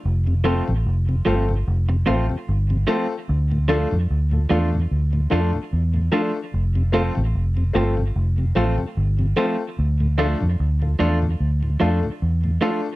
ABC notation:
X:1
M:4/4
L:1/16
Q:"Swing 16ths" 1/4=74
K:F
V:1 name="Upright piano"
z2 [A,CFA] z3 [A,CFA] z3 [A,CFA] z3 [A,CFA] z | z2 [A,DFA] z2 [FA] [A,DFA] z3 [A,DFA] z3 [A,DFA] z | z2 [A,CFA] z3 [A,CFA] z3 [A,CFA] z3 [A,CFA] z | z2 [A,DFA] z2 [FA] [A,DFA] z3 [A,DFA] z3 [A,DFA] z |]
V:2 name="Clean electric guitar"
z2 [F,A,CF]2 z2 [F,A,CF]2 z2 [F,A,CF]2 z2 [F,A,CF]2 | z2 [F,A,DF]2 z2 [F,A,DF]2 z2 [F,A,DF]2 z2 [F,A,DF]2 | z2 [F,A,CF]2 z2 [F,A,CF]2 z2 [F,A,CF]2 z2 [F,A,CF]2 | z2 [F,A,DF]2 z2 [F,A,DF]2 z2 [F,A,DF]2 z2 [F,A,DF]2 |]
V:3 name="Tonewheel organ"
z2 [A,CF]2 z2 [A,CF]2 z2 [A,CF]2 z2 [A,CF]2 | z2 [A,DF]2 z2 [A,DF]2 z2 [A,DF]2 z2 [A,DF]2 | z2 [A,CF]2 z2 [A,CF]2 z2 [A,CF]2 z2 [A,CF]2 | z2 [A,DF]2 z2 [A,DF]2 z2 [A,DF]2 z2 [A,DF]2 |]
V:4 name="Tonewheel organ" clef=bass
z [F,,C,] z [F,,C,] z [F,,C,] z [F,,C,] z [F,,C,] z [F,,C,] z [F,,C,] z2 | z [D,,A,,] z [D,,A,,] z [D,,A,,] z [D,,A,,] z [D,,A,,] z [D,,A,,] z [D,,A,,] z2 | z [F,,C,] z [F,,C,] z [F,,C,] z [F,,C,] z [F,,C,] z [F,,C,] z [F,,C,] z2 | z [D,,A,,] z [D,,A,,] z [D,,A,,] z [D,,A,,] z [D,,A,,] z [D,,A,,] z [D,,A,,] z2 |]
V:5 name="Fingered electric bass" clef=bass
F,,,3 A,,, F,,,2 G,,,2 F,,,2 A,,, z G,,,2 z2 | D,,3 F,, D,,2 E,,2 D,,2 F,, z E,,2 z2 | F,,,3 A,,, F,,,2 G,,,2 F,,,2 A,,, z G,,,2 z2 | D,,3 F,, D,,2 E,,2 D,,2 F,, z E,,2 z2 |]